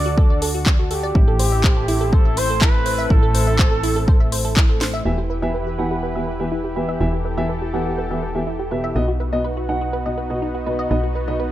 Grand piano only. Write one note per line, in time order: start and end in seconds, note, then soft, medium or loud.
5.05 5.13 E3 medium
5.05 5.13 B3 medium
5.05 5.13 G4 medium
5.05 5.13 E5 loud
5.42 5.49 E3 medium
5.42 5.49 B3 medium
5.42 5.49 G4 medium
5.42 5.49 E5 loud
5.79 6.13 E3 medium
5.79 6.13 B3 medium
5.79 6.13 G4 medium
5.79 6.13 F#5 medium
6.16 6.22 E3 medium
6.16 6.22 B3 medium
6.16 6.22 G4 medium
6.16 6.23 E5 medium
6.40 6.47 E3 medium
6.40 6.47 B3 medium
6.40 6.47 G4 medium
6.40 6.47 E5 medium
6.76 6.98 E3 medium
6.76 6.98 B3 medium
6.76 6.98 G4 medium
6.76 6.98 E5 medium
7.01 7.08 E3 medium
7.01 7.08 B3 medium
7.01 7.08 G4 medium
7.01 7.08 E5 loud
7.37 7.44 E3 medium
7.37 7.44 B3 medium
7.37 7.44 G4 medium
7.37 7.44 E5 loud
7.74 8.08 E3 medium
7.74 8.08 B3 medium
7.74 8.08 G4 medium
7.74 8.08 F#5 medium
8.11 8.18 E3 medium
8.11 8.18 B3 medium
8.11 8.18 G4 medium
8.11 8.18 E5 medium
8.35 8.42 E3 medium
8.35 8.42 B3 medium
8.35 8.42 G4 medium
8.35 8.42 E5 medium
8.71 8.93 B2 medium
8.71 8.93 B3 medium
8.71 8.93 G4 medium
8.71 8.93 E5 medium
8.96 9.03 B2 medium
8.96 9.03 B3 medium
8.96 9.03 F#4 medium
8.96 9.03 D#5 loud
9.33 9.40 B2 loud
9.33 9.40 B3 medium
9.33 9.40 F#4 medium
9.33 9.40 D#5 loud
9.69 10.03 B2 medium
9.69 10.03 B3 medium
9.69 10.03 F#4 medium
9.69 10.03 F#5 medium
10.06 10.13 B2 medium
10.06 10.13 B3 medium
10.06 10.13 F#4 medium
10.06 10.13 D#5 medium
10.30 10.37 B2 medium
10.30 10.37 B3 medium
10.30 10.37 F#4 medium
10.30 10.37 D#5 medium
10.66 10.88 B2 medium
10.66 10.88 B3 medium
10.66 10.88 F#4 medium
10.66 10.88 D#5 medium
10.91 10.98 B2 loud
10.91 10.98 B3 medium
10.91 10.98 F#4 medium
10.91 10.98 D#5 loud
11.28 11.35 B2 loud
11.28 11.35 B3 medium
11.28 11.35 F#4 medium
11.28 11.35 D#5 loud